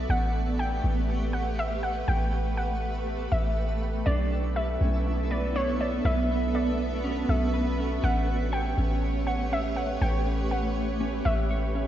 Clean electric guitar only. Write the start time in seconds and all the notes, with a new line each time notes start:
4.07 D4
4.32 A4
4.56 B4
4.81 C#4
5.31 B4
5.56 D4
5.81 A4
6.05 B4
6.30 B3
6.54 A4
7.04 C#4
7.29 A4
7.54 B4
7.78 C#4
8.03 C#4
8.28 B4
8.52 C#5
8.78 C#4
9.27 C#5
9.52 C#4
9.77 B4
10.01 C#5
10.27 C#4
10.52 B4
11.00 C#4
11.25 B4
11.51 C#5
11.75 C#4